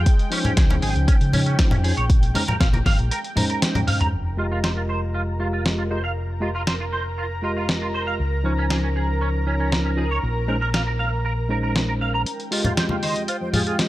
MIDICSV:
0, 0, Header, 1, 8, 480
1, 0, Start_track
1, 0, Key_signature, -4, "minor"
1, 0, Tempo, 508475
1, 59, Time_signature, 4, 2, 24, 8
1, 13105, End_track
2, 0, Start_track
2, 0, Title_t, "Analog synth pad"
2, 0, Program_c, 0, 89
2, 0, Note_on_c, 0, 56, 81
2, 0, Note_on_c, 0, 79, 85
2, 3897, Note_on_c, 0, 70, 80
2, 3899, Note_on_c, 0, 82, 81
2, 3908, Note_off_c, 0, 79, 0
2, 3909, Note_off_c, 0, 56, 0
2, 11575, Note_on_c, 0, 79, 82
2, 11578, Note_on_c, 0, 56, 85
2, 11588, Note_off_c, 0, 70, 0
2, 11589, Note_off_c, 0, 82, 0
2, 13105, Note_off_c, 0, 56, 0
2, 13105, Note_off_c, 0, 79, 0
2, 13105, End_track
3, 0, Start_track
3, 0, Title_t, "Flute"
3, 0, Program_c, 1, 73
3, 12297, Note_on_c, 1, 75, 87
3, 12488, Note_off_c, 1, 75, 0
3, 12538, Note_on_c, 1, 72, 78
3, 12617, Note_off_c, 1, 72, 0
3, 12662, Note_on_c, 1, 72, 73
3, 12737, Note_off_c, 1, 72, 0
3, 12780, Note_on_c, 1, 68, 82
3, 12858, Note_off_c, 1, 68, 0
3, 12901, Note_on_c, 1, 68, 69
3, 12976, Note_off_c, 1, 68, 0
3, 13105, End_track
4, 0, Start_track
4, 0, Title_t, "Clean electric guitar"
4, 0, Program_c, 2, 27
4, 302, Note_on_c, 2, 61, 73
4, 362, Note_off_c, 2, 61, 0
4, 424, Note_on_c, 2, 61, 97
4, 481, Note_off_c, 2, 61, 0
4, 541, Note_on_c, 2, 68, 77
4, 602, Note_off_c, 2, 68, 0
4, 661, Note_on_c, 2, 61, 78
4, 697, Note_off_c, 2, 61, 0
4, 778, Note_on_c, 2, 68, 75
4, 871, Note_off_c, 2, 68, 0
4, 1016, Note_on_c, 2, 61, 86
4, 1079, Note_off_c, 2, 61, 0
4, 1258, Note_on_c, 2, 61, 73
4, 1320, Note_off_c, 2, 61, 0
4, 1380, Note_on_c, 2, 61, 71
4, 1468, Note_off_c, 2, 61, 0
4, 1620, Note_on_c, 2, 61, 76
4, 1656, Note_off_c, 2, 61, 0
4, 1735, Note_on_c, 2, 68, 73
4, 1829, Note_off_c, 2, 68, 0
4, 1861, Note_on_c, 2, 73, 78
4, 1920, Note_off_c, 2, 73, 0
4, 2221, Note_on_c, 2, 70, 74
4, 2282, Note_off_c, 2, 70, 0
4, 2341, Note_on_c, 2, 70, 96
4, 2400, Note_off_c, 2, 70, 0
4, 2457, Note_on_c, 2, 77, 75
4, 2520, Note_off_c, 2, 77, 0
4, 2581, Note_on_c, 2, 70, 76
4, 2616, Note_off_c, 2, 70, 0
4, 2699, Note_on_c, 2, 77, 78
4, 2791, Note_off_c, 2, 77, 0
4, 2939, Note_on_c, 2, 70, 80
4, 3001, Note_off_c, 2, 70, 0
4, 3178, Note_on_c, 2, 70, 77
4, 3240, Note_off_c, 2, 70, 0
4, 3302, Note_on_c, 2, 70, 75
4, 3390, Note_off_c, 2, 70, 0
4, 3541, Note_on_c, 2, 70, 79
4, 3577, Note_off_c, 2, 70, 0
4, 3655, Note_on_c, 2, 77, 75
4, 3750, Note_off_c, 2, 77, 0
4, 3781, Note_on_c, 2, 82, 79
4, 3840, Note_off_c, 2, 82, 0
4, 4138, Note_on_c, 2, 65, 65
4, 4200, Note_off_c, 2, 65, 0
4, 4263, Note_on_c, 2, 65, 86
4, 4321, Note_off_c, 2, 65, 0
4, 4376, Note_on_c, 2, 72, 65
4, 4439, Note_off_c, 2, 72, 0
4, 4501, Note_on_c, 2, 65, 68
4, 4537, Note_off_c, 2, 65, 0
4, 4618, Note_on_c, 2, 72, 65
4, 4711, Note_off_c, 2, 72, 0
4, 4856, Note_on_c, 2, 65, 69
4, 4919, Note_off_c, 2, 65, 0
4, 5096, Note_on_c, 2, 65, 65
4, 5159, Note_off_c, 2, 65, 0
4, 5221, Note_on_c, 2, 65, 65
4, 5309, Note_off_c, 2, 65, 0
4, 5461, Note_on_c, 2, 65, 65
4, 5497, Note_off_c, 2, 65, 0
4, 5578, Note_on_c, 2, 72, 65
4, 5671, Note_off_c, 2, 72, 0
4, 5699, Note_on_c, 2, 77, 68
4, 5759, Note_off_c, 2, 77, 0
4, 6058, Note_on_c, 2, 65, 63
4, 6120, Note_off_c, 2, 65, 0
4, 6181, Note_on_c, 2, 65, 87
4, 6240, Note_off_c, 2, 65, 0
4, 6298, Note_on_c, 2, 72, 68
4, 6360, Note_off_c, 2, 72, 0
4, 6421, Note_on_c, 2, 65, 66
4, 6457, Note_off_c, 2, 65, 0
4, 6538, Note_on_c, 2, 72, 68
4, 6631, Note_off_c, 2, 72, 0
4, 6778, Note_on_c, 2, 65, 72
4, 6840, Note_off_c, 2, 65, 0
4, 7020, Note_on_c, 2, 65, 66
4, 7081, Note_off_c, 2, 65, 0
4, 7143, Note_on_c, 2, 65, 64
4, 7230, Note_off_c, 2, 65, 0
4, 7381, Note_on_c, 2, 65, 71
4, 7417, Note_off_c, 2, 65, 0
4, 7499, Note_on_c, 2, 72, 66
4, 7591, Note_off_c, 2, 72, 0
4, 7618, Note_on_c, 2, 77, 71
4, 7679, Note_off_c, 2, 77, 0
4, 7975, Note_on_c, 2, 61, 69
4, 8039, Note_off_c, 2, 61, 0
4, 8102, Note_on_c, 2, 61, 88
4, 8160, Note_off_c, 2, 61, 0
4, 8218, Note_on_c, 2, 68, 75
4, 8280, Note_off_c, 2, 68, 0
4, 8340, Note_on_c, 2, 61, 67
4, 8376, Note_off_c, 2, 61, 0
4, 8457, Note_on_c, 2, 68, 73
4, 8551, Note_off_c, 2, 68, 0
4, 8695, Note_on_c, 2, 61, 79
4, 8758, Note_off_c, 2, 61, 0
4, 8938, Note_on_c, 2, 61, 70
4, 9000, Note_off_c, 2, 61, 0
4, 9060, Note_on_c, 2, 61, 63
4, 9149, Note_off_c, 2, 61, 0
4, 9301, Note_on_c, 2, 61, 70
4, 9337, Note_off_c, 2, 61, 0
4, 9416, Note_on_c, 2, 68, 66
4, 9510, Note_off_c, 2, 68, 0
4, 9544, Note_on_c, 2, 73, 71
4, 9601, Note_off_c, 2, 73, 0
4, 9897, Note_on_c, 2, 70, 67
4, 9960, Note_off_c, 2, 70, 0
4, 10019, Note_on_c, 2, 70, 85
4, 10079, Note_off_c, 2, 70, 0
4, 10136, Note_on_c, 2, 77, 69
4, 10199, Note_off_c, 2, 77, 0
4, 10259, Note_on_c, 2, 70, 71
4, 10296, Note_off_c, 2, 70, 0
4, 10377, Note_on_c, 2, 77, 72
4, 10471, Note_off_c, 2, 77, 0
4, 10618, Note_on_c, 2, 70, 74
4, 10680, Note_off_c, 2, 70, 0
4, 10861, Note_on_c, 2, 70, 70
4, 10922, Note_off_c, 2, 70, 0
4, 10981, Note_on_c, 2, 70, 67
4, 11069, Note_off_c, 2, 70, 0
4, 11221, Note_on_c, 2, 70, 70
4, 11257, Note_off_c, 2, 70, 0
4, 11340, Note_on_c, 2, 77, 66
4, 11432, Note_off_c, 2, 77, 0
4, 11463, Note_on_c, 2, 82, 73
4, 11521, Note_off_c, 2, 82, 0
4, 11821, Note_on_c, 2, 65, 66
4, 11882, Note_off_c, 2, 65, 0
4, 11942, Note_on_c, 2, 65, 89
4, 12000, Note_off_c, 2, 65, 0
4, 12058, Note_on_c, 2, 72, 72
4, 12120, Note_off_c, 2, 72, 0
4, 12184, Note_on_c, 2, 65, 69
4, 12218, Note_off_c, 2, 65, 0
4, 12300, Note_on_c, 2, 72, 69
4, 12392, Note_off_c, 2, 72, 0
4, 12538, Note_on_c, 2, 65, 77
4, 12600, Note_off_c, 2, 65, 0
4, 12778, Note_on_c, 2, 65, 73
4, 12840, Note_off_c, 2, 65, 0
4, 12902, Note_on_c, 2, 65, 67
4, 12989, Note_off_c, 2, 65, 0
4, 13105, End_track
5, 0, Start_track
5, 0, Title_t, "Tine electric piano"
5, 0, Program_c, 3, 4
5, 285, Note_on_c, 3, 53, 90
5, 291, Note_on_c, 3, 61, 85
5, 298, Note_on_c, 3, 63, 84
5, 303, Note_on_c, 3, 72, 105
5, 1224, Note_off_c, 3, 53, 0
5, 1227, Note_off_c, 3, 61, 0
5, 1230, Note_off_c, 3, 63, 0
5, 1233, Note_off_c, 3, 72, 0
5, 1253, Note_on_c, 3, 53, 71
5, 1256, Note_on_c, 3, 61, 65
5, 1259, Note_on_c, 3, 63, 64
5, 1262, Note_on_c, 3, 73, 80
5, 1468, Note_off_c, 3, 53, 0
5, 1470, Note_off_c, 3, 61, 0
5, 1471, Note_off_c, 3, 63, 0
5, 1472, Note_off_c, 3, 73, 0
5, 1495, Note_on_c, 3, 53, 77
5, 1498, Note_on_c, 3, 61, 69
5, 1503, Note_on_c, 3, 63, 67
5, 1504, Note_on_c, 3, 72, 80
5, 1709, Note_off_c, 3, 53, 0
5, 1711, Note_off_c, 3, 61, 0
5, 1713, Note_off_c, 3, 63, 0
5, 1714, Note_off_c, 3, 72, 0
5, 1734, Note_on_c, 3, 53, 88
5, 1736, Note_on_c, 3, 61, 84
5, 1741, Note_on_c, 3, 63, 82
5, 1745, Note_on_c, 3, 72, 100
5, 1800, Note_off_c, 3, 53, 0
5, 1801, Note_off_c, 3, 61, 0
5, 1803, Note_off_c, 3, 63, 0
5, 1805, Note_off_c, 3, 72, 0
5, 2214, Note_on_c, 3, 56, 98
5, 2217, Note_on_c, 3, 61, 92
5, 2219, Note_on_c, 3, 63, 87
5, 2223, Note_on_c, 3, 72, 105
5, 2279, Note_off_c, 3, 56, 0
5, 2281, Note_off_c, 3, 61, 0
5, 2282, Note_off_c, 3, 63, 0
5, 2284, Note_off_c, 3, 72, 0
5, 3169, Note_on_c, 3, 56, 85
5, 3175, Note_on_c, 3, 61, 77
5, 3180, Note_on_c, 3, 63, 72
5, 3185, Note_on_c, 3, 72, 87
5, 3880, Note_off_c, 3, 56, 0
5, 3883, Note_off_c, 3, 61, 0
5, 3886, Note_off_c, 3, 63, 0
5, 3888, Note_off_c, 3, 72, 0
5, 4128, Note_on_c, 3, 56, 77
5, 4135, Note_on_c, 3, 65, 69
5, 4141, Note_on_c, 3, 67, 69
5, 4148, Note_on_c, 3, 75, 86
5, 5065, Note_off_c, 3, 56, 0
5, 5069, Note_off_c, 3, 65, 0
5, 5072, Note_off_c, 3, 67, 0
5, 5076, Note_off_c, 3, 75, 0
5, 5092, Note_on_c, 3, 56, 61
5, 5094, Note_on_c, 3, 65, 56
5, 5097, Note_on_c, 3, 67, 57
5, 5101, Note_on_c, 3, 77, 70
5, 5308, Note_off_c, 3, 56, 0
5, 5309, Note_off_c, 3, 65, 0
5, 5310, Note_off_c, 3, 67, 0
5, 5312, Note_off_c, 3, 77, 0
5, 5331, Note_on_c, 3, 56, 68
5, 5335, Note_on_c, 3, 65, 60
5, 5338, Note_on_c, 3, 67, 60
5, 5340, Note_on_c, 3, 75, 74
5, 5547, Note_off_c, 3, 56, 0
5, 5549, Note_off_c, 3, 65, 0
5, 5550, Note_off_c, 3, 67, 0
5, 5551, Note_off_c, 3, 75, 0
5, 5570, Note_on_c, 3, 56, 82
5, 5574, Note_on_c, 3, 65, 74
5, 5577, Note_on_c, 3, 67, 73
5, 5581, Note_on_c, 3, 75, 90
5, 5638, Note_off_c, 3, 56, 0
5, 5640, Note_off_c, 3, 65, 0
5, 5641, Note_off_c, 3, 67, 0
5, 5643, Note_off_c, 3, 75, 0
5, 6048, Note_on_c, 3, 56, 84
5, 6051, Note_on_c, 3, 65, 77
5, 6054, Note_on_c, 3, 67, 80
5, 6058, Note_on_c, 3, 75, 96
5, 6117, Note_off_c, 3, 56, 0
5, 6118, Note_off_c, 3, 65, 0
5, 6120, Note_off_c, 3, 67, 0
5, 6122, Note_off_c, 3, 75, 0
5, 7005, Note_on_c, 3, 56, 71
5, 7011, Note_on_c, 3, 65, 68
5, 7017, Note_on_c, 3, 67, 65
5, 7024, Note_on_c, 3, 75, 80
5, 7718, Note_off_c, 3, 56, 0
5, 7721, Note_off_c, 3, 65, 0
5, 7724, Note_off_c, 3, 67, 0
5, 7727, Note_off_c, 3, 75, 0
5, 7965, Note_on_c, 3, 53, 85
5, 7971, Note_on_c, 3, 61, 74
5, 7977, Note_on_c, 3, 63, 76
5, 7984, Note_on_c, 3, 72, 91
5, 8904, Note_off_c, 3, 53, 0
5, 8907, Note_off_c, 3, 61, 0
5, 8910, Note_off_c, 3, 63, 0
5, 8913, Note_off_c, 3, 72, 0
5, 8932, Note_on_c, 3, 53, 64
5, 8935, Note_on_c, 3, 61, 61
5, 8939, Note_on_c, 3, 63, 59
5, 8940, Note_on_c, 3, 73, 75
5, 9147, Note_off_c, 3, 53, 0
5, 9149, Note_off_c, 3, 61, 0
5, 9151, Note_off_c, 3, 63, 0
5, 9152, Note_off_c, 3, 73, 0
5, 9170, Note_on_c, 3, 53, 70
5, 9173, Note_on_c, 3, 61, 61
5, 9175, Note_on_c, 3, 63, 61
5, 9179, Note_on_c, 3, 72, 75
5, 9386, Note_off_c, 3, 53, 0
5, 9388, Note_off_c, 3, 61, 0
5, 9389, Note_off_c, 3, 63, 0
5, 9391, Note_off_c, 3, 72, 0
5, 9410, Note_on_c, 3, 53, 84
5, 9412, Note_on_c, 3, 61, 78
5, 9416, Note_on_c, 3, 63, 74
5, 9418, Note_on_c, 3, 72, 90
5, 9477, Note_off_c, 3, 53, 0
5, 9479, Note_off_c, 3, 61, 0
5, 9481, Note_off_c, 3, 63, 0
5, 9482, Note_off_c, 3, 72, 0
5, 9892, Note_on_c, 3, 56, 91
5, 9895, Note_on_c, 3, 61, 86
5, 9899, Note_on_c, 3, 63, 79
5, 9901, Note_on_c, 3, 72, 104
5, 9959, Note_off_c, 3, 56, 0
5, 9960, Note_off_c, 3, 61, 0
5, 9962, Note_off_c, 3, 63, 0
5, 9963, Note_off_c, 3, 72, 0
5, 10845, Note_on_c, 3, 56, 78
5, 10852, Note_on_c, 3, 61, 70
5, 10858, Note_on_c, 3, 63, 73
5, 10864, Note_on_c, 3, 72, 80
5, 11558, Note_off_c, 3, 56, 0
5, 11561, Note_off_c, 3, 61, 0
5, 11564, Note_off_c, 3, 63, 0
5, 11567, Note_off_c, 3, 72, 0
5, 11808, Note_on_c, 3, 56, 85
5, 11815, Note_on_c, 3, 65, 77
5, 11821, Note_on_c, 3, 67, 79
5, 11828, Note_on_c, 3, 75, 94
5, 12745, Note_off_c, 3, 56, 0
5, 12749, Note_off_c, 3, 65, 0
5, 12752, Note_off_c, 3, 67, 0
5, 12755, Note_off_c, 3, 75, 0
5, 12769, Note_on_c, 3, 56, 69
5, 12772, Note_on_c, 3, 65, 60
5, 12776, Note_on_c, 3, 67, 60
5, 12780, Note_on_c, 3, 77, 78
5, 12986, Note_off_c, 3, 56, 0
5, 12988, Note_off_c, 3, 65, 0
5, 12989, Note_off_c, 3, 67, 0
5, 12991, Note_off_c, 3, 77, 0
5, 13011, Note_on_c, 3, 56, 68
5, 13013, Note_on_c, 3, 65, 64
5, 13017, Note_on_c, 3, 67, 61
5, 13020, Note_on_c, 3, 75, 80
5, 13105, Note_off_c, 3, 56, 0
5, 13105, Note_off_c, 3, 65, 0
5, 13105, Note_off_c, 3, 67, 0
5, 13105, Note_off_c, 3, 75, 0
5, 13105, End_track
6, 0, Start_track
6, 0, Title_t, "Fingered electric bass"
6, 0, Program_c, 4, 33
6, 540, Note_on_c, 4, 37, 96
6, 730, Note_off_c, 4, 37, 0
6, 778, Note_on_c, 4, 32, 87
6, 875, Note_off_c, 4, 32, 0
6, 902, Note_on_c, 4, 37, 100
6, 994, Note_off_c, 4, 37, 0
6, 1143, Note_on_c, 4, 49, 74
6, 1460, Note_off_c, 4, 49, 0
6, 1622, Note_on_c, 4, 41, 96
6, 1810, Note_off_c, 4, 41, 0
6, 1863, Note_on_c, 4, 34, 92
6, 2179, Note_off_c, 4, 34, 0
6, 2459, Note_on_c, 4, 34, 97
6, 2649, Note_off_c, 4, 34, 0
6, 2699, Note_on_c, 4, 32, 88
6, 2796, Note_off_c, 4, 32, 0
6, 2821, Note_on_c, 4, 34, 96
6, 2913, Note_off_c, 4, 34, 0
6, 3897, Note_on_c, 4, 29, 74
6, 7715, Note_off_c, 4, 29, 0
6, 7736, Note_on_c, 4, 37, 81
6, 9634, Note_off_c, 4, 37, 0
6, 9659, Note_on_c, 4, 34, 81
6, 11556, Note_off_c, 4, 34, 0
6, 12058, Note_on_c, 4, 29, 94
6, 12248, Note_off_c, 4, 29, 0
6, 12297, Note_on_c, 4, 39, 88
6, 12395, Note_off_c, 4, 39, 0
6, 12420, Note_on_c, 4, 29, 88
6, 12513, Note_off_c, 4, 29, 0
6, 12659, Note_on_c, 4, 41, 72
6, 12978, Note_off_c, 4, 41, 0
6, 13105, End_track
7, 0, Start_track
7, 0, Title_t, "Muted fingered electric bass strokes"
7, 422, Note_on_c, 9, 29, 41
7, 516, Note_off_c, 9, 29, 0
7, 1019, Note_on_c, 9, 29, 41
7, 1114, Note_off_c, 9, 29, 0
7, 2341, Note_on_c, 9, 29, 42
7, 2435, Note_off_c, 9, 29, 0
7, 12538, Note_on_c, 9, 29, 38
7, 12632, Note_off_c, 9, 29, 0
7, 13105, End_track
8, 0, Start_track
8, 0, Title_t, "Drums"
8, 58, Note_on_c, 9, 42, 90
8, 59, Note_on_c, 9, 36, 110
8, 152, Note_off_c, 9, 42, 0
8, 154, Note_off_c, 9, 36, 0
8, 183, Note_on_c, 9, 42, 39
8, 277, Note_off_c, 9, 42, 0
8, 299, Note_on_c, 9, 46, 96
8, 393, Note_off_c, 9, 46, 0
8, 423, Note_on_c, 9, 42, 40
8, 423, Note_on_c, 9, 64, 73
8, 517, Note_off_c, 9, 42, 0
8, 517, Note_off_c, 9, 64, 0
8, 538, Note_on_c, 9, 38, 119
8, 538, Note_on_c, 9, 42, 98
8, 540, Note_on_c, 9, 36, 118
8, 632, Note_off_c, 9, 42, 0
8, 633, Note_off_c, 9, 38, 0
8, 634, Note_off_c, 9, 36, 0
8, 662, Note_on_c, 9, 42, 41
8, 666, Note_on_c, 9, 63, 92
8, 757, Note_off_c, 9, 42, 0
8, 760, Note_off_c, 9, 63, 0
8, 778, Note_on_c, 9, 46, 84
8, 872, Note_off_c, 9, 46, 0
8, 904, Note_on_c, 9, 42, 36
8, 998, Note_off_c, 9, 42, 0
8, 1019, Note_on_c, 9, 42, 99
8, 1020, Note_on_c, 9, 36, 113
8, 1113, Note_off_c, 9, 42, 0
8, 1114, Note_off_c, 9, 36, 0
8, 1142, Note_on_c, 9, 42, 42
8, 1236, Note_off_c, 9, 42, 0
8, 1259, Note_on_c, 9, 64, 70
8, 1260, Note_on_c, 9, 46, 91
8, 1354, Note_off_c, 9, 46, 0
8, 1354, Note_off_c, 9, 64, 0
8, 1383, Note_on_c, 9, 42, 39
8, 1477, Note_off_c, 9, 42, 0
8, 1499, Note_on_c, 9, 38, 124
8, 1499, Note_on_c, 9, 42, 101
8, 1500, Note_on_c, 9, 36, 112
8, 1593, Note_off_c, 9, 38, 0
8, 1593, Note_off_c, 9, 42, 0
8, 1594, Note_off_c, 9, 36, 0
8, 1615, Note_on_c, 9, 64, 99
8, 1624, Note_on_c, 9, 42, 40
8, 1710, Note_off_c, 9, 64, 0
8, 1718, Note_off_c, 9, 42, 0
8, 1740, Note_on_c, 9, 46, 83
8, 1835, Note_off_c, 9, 46, 0
8, 1864, Note_on_c, 9, 42, 42
8, 1958, Note_off_c, 9, 42, 0
8, 1979, Note_on_c, 9, 42, 92
8, 1980, Note_on_c, 9, 36, 115
8, 2074, Note_off_c, 9, 36, 0
8, 2074, Note_off_c, 9, 42, 0
8, 2103, Note_on_c, 9, 42, 40
8, 2198, Note_off_c, 9, 42, 0
8, 2220, Note_on_c, 9, 46, 98
8, 2220, Note_on_c, 9, 63, 83
8, 2314, Note_off_c, 9, 46, 0
8, 2315, Note_off_c, 9, 63, 0
8, 2343, Note_on_c, 9, 42, 41
8, 2346, Note_on_c, 9, 64, 74
8, 2438, Note_off_c, 9, 42, 0
8, 2440, Note_off_c, 9, 64, 0
8, 2459, Note_on_c, 9, 36, 117
8, 2460, Note_on_c, 9, 38, 127
8, 2460, Note_on_c, 9, 42, 104
8, 2554, Note_off_c, 9, 36, 0
8, 2554, Note_off_c, 9, 42, 0
8, 2555, Note_off_c, 9, 38, 0
8, 2582, Note_on_c, 9, 63, 87
8, 2584, Note_on_c, 9, 42, 40
8, 2676, Note_off_c, 9, 63, 0
8, 2679, Note_off_c, 9, 42, 0
8, 2698, Note_on_c, 9, 63, 56
8, 2699, Note_on_c, 9, 36, 57
8, 2700, Note_on_c, 9, 46, 86
8, 2701, Note_on_c, 9, 38, 63
8, 2792, Note_off_c, 9, 63, 0
8, 2793, Note_off_c, 9, 36, 0
8, 2794, Note_off_c, 9, 46, 0
8, 2795, Note_off_c, 9, 38, 0
8, 2823, Note_on_c, 9, 42, 38
8, 2917, Note_off_c, 9, 42, 0
8, 2940, Note_on_c, 9, 42, 101
8, 3034, Note_off_c, 9, 42, 0
8, 3063, Note_on_c, 9, 42, 44
8, 3157, Note_off_c, 9, 42, 0
8, 3178, Note_on_c, 9, 64, 85
8, 3179, Note_on_c, 9, 46, 97
8, 3273, Note_off_c, 9, 64, 0
8, 3274, Note_off_c, 9, 46, 0
8, 3302, Note_on_c, 9, 42, 40
8, 3397, Note_off_c, 9, 42, 0
8, 3419, Note_on_c, 9, 42, 100
8, 3420, Note_on_c, 9, 38, 125
8, 3514, Note_off_c, 9, 38, 0
8, 3514, Note_off_c, 9, 42, 0
8, 3542, Note_on_c, 9, 42, 40
8, 3542, Note_on_c, 9, 48, 53
8, 3542, Note_on_c, 9, 64, 104
8, 3636, Note_off_c, 9, 64, 0
8, 3637, Note_off_c, 9, 42, 0
8, 3637, Note_off_c, 9, 48, 0
8, 3659, Note_on_c, 9, 46, 88
8, 3659, Note_on_c, 9, 47, 80
8, 3753, Note_off_c, 9, 46, 0
8, 3753, Note_off_c, 9, 47, 0
8, 3783, Note_on_c, 9, 42, 42
8, 3783, Note_on_c, 9, 45, 82
8, 3877, Note_off_c, 9, 42, 0
8, 3877, Note_off_c, 9, 45, 0
8, 4379, Note_on_c, 9, 38, 109
8, 4473, Note_off_c, 9, 38, 0
8, 5340, Note_on_c, 9, 38, 118
8, 5434, Note_off_c, 9, 38, 0
8, 6298, Note_on_c, 9, 38, 113
8, 6392, Note_off_c, 9, 38, 0
8, 7259, Note_on_c, 9, 38, 118
8, 7353, Note_off_c, 9, 38, 0
8, 8217, Note_on_c, 9, 38, 116
8, 8312, Note_off_c, 9, 38, 0
8, 9179, Note_on_c, 9, 38, 110
8, 9273, Note_off_c, 9, 38, 0
8, 10139, Note_on_c, 9, 38, 116
8, 10234, Note_off_c, 9, 38, 0
8, 11098, Note_on_c, 9, 38, 116
8, 11193, Note_off_c, 9, 38, 0
8, 11578, Note_on_c, 9, 42, 73
8, 11672, Note_off_c, 9, 42, 0
8, 11703, Note_on_c, 9, 42, 34
8, 11797, Note_off_c, 9, 42, 0
8, 11818, Note_on_c, 9, 46, 99
8, 11912, Note_off_c, 9, 46, 0
8, 11936, Note_on_c, 9, 64, 85
8, 11941, Note_on_c, 9, 42, 52
8, 12031, Note_off_c, 9, 64, 0
8, 12035, Note_off_c, 9, 42, 0
8, 12058, Note_on_c, 9, 38, 125
8, 12058, Note_on_c, 9, 42, 83
8, 12152, Note_off_c, 9, 42, 0
8, 12153, Note_off_c, 9, 38, 0
8, 12170, Note_on_c, 9, 63, 83
8, 12264, Note_off_c, 9, 63, 0
8, 12297, Note_on_c, 9, 46, 84
8, 12392, Note_off_c, 9, 46, 0
8, 12421, Note_on_c, 9, 42, 49
8, 12515, Note_off_c, 9, 42, 0
8, 12538, Note_on_c, 9, 42, 80
8, 12632, Note_off_c, 9, 42, 0
8, 12776, Note_on_c, 9, 64, 82
8, 12778, Note_on_c, 9, 46, 93
8, 12871, Note_off_c, 9, 64, 0
8, 12872, Note_off_c, 9, 46, 0
8, 12901, Note_on_c, 9, 42, 49
8, 12996, Note_off_c, 9, 42, 0
8, 13017, Note_on_c, 9, 42, 81
8, 13018, Note_on_c, 9, 38, 121
8, 13105, Note_off_c, 9, 38, 0
8, 13105, Note_off_c, 9, 42, 0
8, 13105, End_track
0, 0, End_of_file